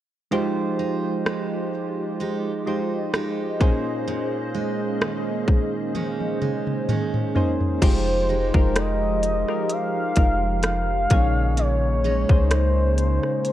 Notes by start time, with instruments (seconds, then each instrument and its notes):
0.32 steel-string acoustic guitar F3, synth keys G#3 D#4 F4 G4 C5, analog synth pad G#3 F4 G4 D#5
0.79 steel-string acoustic guitar D#4
1.26 steel-string acoustic guitar G#3, cross-stick
2.20 steel-string acoustic guitar G#3 D#4 G4
2.66 synth keys G#3 D#4 F4 G4 C5, steel-string acoustic guitar D#4
3.13 steel-string acoustic guitar G#3 D#4 G4, cross-stick
3.60 steel-string acoustic guitar A#2, synth keys A#3 C#4 D#4 G#4 C5, analog synth pad A#3 C#4 G#4 C5, kick
4.07 steel-string acoustic guitar A#2
4.54 steel-string acoustic guitar G#3
5.01 steel-string acoustic guitar D#3, cross-stick
5.48 analog synth pad C5, kick
5.95 steel-string acoustic guitar D#3 G#3 C#4, high tom
6.21 high tom
6.42 steel-string acoustic guitar G#3, mid tom
6.67 mid tom
6.89 steel-string acoustic guitar D#3 G#3 C#4, mid tom
7.14 mid tom
7.35 synth keys A#3 C#4 D#4 G#4 C5, floor tom
7.61 floor tom
7.82 808-style bass F1, analog synth pad F3 G#3 D#4 G4, steel-string acoustic guitar F3, synth keys G#3 D#4 F4 G4 C5, soft synth lead C5, kick, closed hi-hat, crash
8.29 steel-string acoustic guitar G#3 D#4 G4
8.54 808-style bass F1, synth keys G#3 D#4 F4 G4 A#4, kick
8.76 soft synth lead D#5, cross-stick, closed hi-hat
9.23 closed hi-hat
9.48 synth keys G#3 D#4 F4 G4 A#4, cross-stick
9.70 soft synth lead F5, closed hi-hat
10.16 808-style bass F1, synth keys G#3 D#4 F4 G4 A#4, kick, closed hi-hat
10.63 soft synth lead F5, cross-stick, closed hi-hat
11.10 808-style bass A#1, steel-string acoustic guitar A#2, analog synth pad C#3 G#3 A#3, synth keys A#3 C#4 D#4 G#4 C#5, kick, closed hi-hat
11.57 steel-string acoustic guitar A#2, soft synth lead C#5, closed hi-hat
12.04 steel-string acoustic guitar G#3 C#4 D#4
12.29 808-style bass C#2, synth keys A#3 C#4 D#4 G#4 C5, kick
12.51 soft synth lead C5, cross-stick, closed hi-hat
12.98 closed hi-hat
13.23 cross-stick
13.45 soft synth lead C5, closed hi-hat